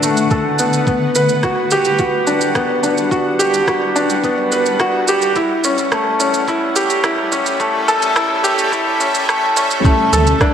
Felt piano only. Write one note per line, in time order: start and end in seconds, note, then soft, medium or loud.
0.00 0.03 A3 medium
0.00 0.30 A3 medium
0.00 0.59 B3 medium
0.00 0.89 D4 medium
0.00 0.90 F#4 medium
0.00 0.31 A4 loud
0.31 0.47 A4 medium
0.59 0.75 B3 medium
0.87 1.14 B3 medium
1.16 1.31 B4 medium
1.44 1.70 F#4 medium
1.72 1.98 G4 loud
1.99 2.15 F#4 medium
2.27 2.43 D4 medium
2.55 2.71 B3 medium
2.83 3.10 D4 medium
3.11 3.27 F#4 medium
3.39 3.55 G4 loud
3.68 3.94 F#4 medium
3.96 4.22 D4 medium
4.24 4.51 B3 medium
4.52 4.68 B4 medium
4.80 5.07 F#4 loud
5.09 5.35 G4 loud
5.36 5.52 E4 medium
5.65 5.80 C#4 medium
5.92 6.08 A3 medium
6.20 6.47 C#4 medium
6.48 6.64 E4 medium
6.76 6.92 G4 loud
7.04 7.31 E4 medium
7.32 7.59 C#4 medium
7.60 7.87 A3 medium
7.88 8.04 A4 loud
8.16 8.43 E4 loud
8.44 8.71 G4 loud
8.72 8.88 E4 medium
9.00 9.16 C#4 medium
9.29 9.44 A3 medium
9.57 9.83 C#4 medium
9.85 10.11 A3 medium
10.13 10.29 A4 loud
10.41 10.54 D4 loud